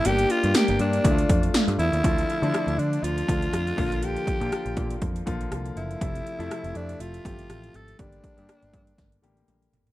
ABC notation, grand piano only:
X:1
M:4/4
L:1/16
Q:"Swing 16ths" 1/4=121
K:Dm
V:1 name="Grand piano"
[B,DG]3 z [B,DG]4 [A,DEF]6 z2 | [D,F,A,F]2 z [D,F,A,D]4- [D,F,A,D] z2 [D,F,A,F]4 [D,F,B,F]2- | [D,F,B,F]2 z [D,F,B,F]4- [D,F,B,F] z2 [D,F,B,F]4- [D,F,B,F] z | [C,F,A,E]2 z [C,F,A,E]4- [C,F,A,E] z2 [C,F,A,G]4- [C,F,A,G] z |
[D,G,B,G]2 z [D,G,B,G]4- [D,G,B,G] z2 [D,G,B,G]4- [D,G,B,G] z |]